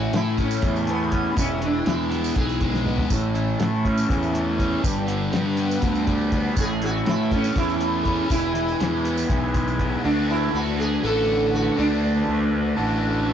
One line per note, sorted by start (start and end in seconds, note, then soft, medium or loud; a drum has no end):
0.00 0.87 A2 medium
0.00 0.62 E3 medium
0.00 0.13 F#4 medium
0.13 0.57 A2 loud
0.13 0.86 A3 medium
0.13 0.37 E4 medium
0.13 snare loud
0.13 closed hi-hat medium
0.37 1.11 C#4 medium
0.37 kick medium
0.37 closed hi-hat medium
0.42 0.89 C#4 medium
0.51 tambourine medium
0.62 1.28 E2 medium
0.62 1.36 E3 medium
0.62 kick loud
0.62 closed hi-hat medium
0.62 tambourine soft
0.76 tambourine soft
0.87 1.37 A3 medium
0.87 1.35 B3 medium
0.87 closed hi-hat medium
1.12 1.37 C#4 medium
1.12 kick medium
1.12 closed hi-hat medium
1.37 1.81 E1 medium
1.37 1.60 E3 medium
1.37 1.64 C#4 medium
1.37 kick loud
1.37 closed hi-hat medium
1.37 tambourine medium
1.61 2.35 E3 medium
1.61 1.87 D4 medium
1.61 closed hi-hat medium
1.86 2.30 E2 loud
1.86 2.59 G#3 medium
1.86 2.37 E4 medium
1.86 snare loud
1.86 closed hi-hat medium
2.10 2.85 B3 medium
2.10 snare soft
2.10 closed hi-hat medium
2.24 tambourine medium
2.36 3.01 B1 medium
2.36 3.10 E3 medium
2.36 2.89 G#4 medium
2.36 kick loud
2.36 closed hi-hat medium
2.49 tambourine soft
2.61 3.10 G#3 medium
2.61 kick medium
2.61 closed hi-hat medium
2.74 snare medium
2.86 3.11 B3 medium
2.86 mid tom medium
2.98 floor tom medium
3.10 3.54 A1 medium
3.10 4.34 A2 medium
3.10 4.83 C#4 medium
3.10 4.83 E4 medium
3.10 4.83 A4 medium
3.10 4.83 E5 medium
3.10 kick loud
3.10 closed hi-hat medium
3.10 tambourine loud
3.34 4.07 E3 medium
3.34 closed hi-hat medium
3.59 4.04 A2 medium
3.59 4.31 A3 medium
3.59 snare medium
3.59 closed hi-hat medium
3.84 4.57 C#4 medium
3.84 kick medium
3.84 closed hi-hat medium
3.98 tambourine medium
4.08 4.75 E2 medium
4.08 4.83 E3 medium
4.08 kick loud
4.08 closed hi-hat medium
4.08 tambourine soft
4.23 tambourine soft
4.33 4.83 A3 medium
4.33 closed hi-hat medium
4.58 4.83 C#4 medium
4.58 kick medium
4.58 snare soft
4.58 closed hi-hat medium
4.82 5.27 G1 medium
4.82 6.07 G2 medium
4.82 6.56 D4 medium
4.82 6.56 G4 medium
4.82 6.56 B4 medium
4.82 6.56 G5 medium
4.82 kick loud
4.82 closed hi-hat medium
4.82 tambourine medium
5.07 5.81 D3 medium
5.07 closed hi-hat medium
5.32 5.77 G2 loud
5.32 6.06 G3 medium
5.32 snare loud
5.32 closed hi-hat medium
5.57 6.31 B3 medium
5.57 closed hi-hat medium
5.71 tambourine medium
5.82 6.48 D2 medium
5.82 6.57 D3 medium
5.82 kick loud
5.82 closed hi-hat medium
5.82 tambourine soft
5.95 tambourine soft
6.07 6.57 G3 medium
6.07 kick medium
6.07 closed hi-hat medium
6.32 6.57 B3 medium
6.32 kick medium
6.32 closed hi-hat medium
6.57 7.00 A1 medium
6.57 7.81 A2 medium
6.57 10.01 E4 medium
6.57 6.84 G#4 loud
6.57 8.29 A4 medium
6.57 8.29 C#5 medium
6.57 8.29 A5 medium
6.57 kick loud
6.57 closed hi-hat medium
6.57 tambourine medium
6.82 7.55 E3 medium
6.82 7.09 F#4 medium
6.82 closed hi-hat medium
7.06 7.50 A2 loud
7.06 7.80 A3 medium
7.06 7.31 E4 medium
7.06 snare loud
7.06 closed hi-hat medium
7.31 8.06 C#4 medium
7.31 7.56 C#4 medium
7.31 kick medium
7.31 closed hi-hat medium
7.44 tambourine medium
7.56 8.21 E2 medium
7.56 8.30 E3 medium
7.56 8.27 E4 medium
7.56 kick loud
7.56 closed hi-hat medium
7.56 tambourine soft
7.69 tambourine soft
7.81 8.31 A3 medium
7.81 closed hi-hat medium
8.05 8.31 C#4 medium
8.05 kick medium
8.05 closed hi-hat medium
8.30 8.74 E1 medium
8.30 8.54 E3 medium
8.30 9.51 E4 medium
8.30 10.03 G#4 medium
8.30 10.02 B4 medium
8.30 10.02 G#5 medium
8.30 kick loud
8.30 closed hi-hat medium
8.30 tambourine medium
8.55 9.28 E3 medium
8.55 closed hi-hat medium
8.68 tambourine soft
8.80 9.24 E2 loud
8.80 9.53 G#3 medium
8.80 snare loud
8.80 closed hi-hat medium
9.04 9.78 B3 medium
9.04 closed hi-hat medium
9.17 tambourine medium
9.29 9.95 B1 medium
9.29 10.03 E3 medium
9.29 kick loud
9.29 closed hi-hat medium
9.54 10.04 G#3 medium
9.54 kick medium
9.54 closed hi-hat medium
9.54 tambourine soft
9.68 tambourine soft
9.79 10.04 B3 medium
9.79 kick medium
9.79 closed hi-hat medium
10.03 10.48 D2 medium
10.03 11.01 D3 medium
10.03 11.02 A3 medium
10.03 10.30 D4 medium
10.03 11.02 D4 medium
10.03 13.33 F#4 medium
10.03 11.03 F#4 loud
10.03 11.03 A4 loud
10.03 13.33 B4 medium
10.03 13.33 D5 medium
10.03 13.33 A5 medium
10.30 10.55 E4 medium
10.53 10.97 D2 loud
10.53 10.80 F#4 medium
10.80 11.04 G#4 medium
11.03 11.68 A1 medium
11.03 11.76 D3 medium
11.03 11.76 A3 medium
11.03 11.77 D4 medium
11.03 11.77 F#4 medium
11.03 11.54 A4 medium
11.03 11.77 A4 medium
11.55 11.79 F#4 medium
11.77 12.21 D2 loud
11.77 12.75 D3 medium
11.77 12.75 A3 medium
11.77 12.75 D4 medium
11.77 13.23 D4 medium
11.77 12.76 F#4 loud
11.77 12.75 A4 medium
12.28 12.71 D2 loud
12.76 13.33 A1 medium
12.76 13.33 D3 medium
12.76 13.33 A3 medium
12.76 13.33 D4 medium
12.76 13.33 F#4 medium
12.76 13.33 A4 medium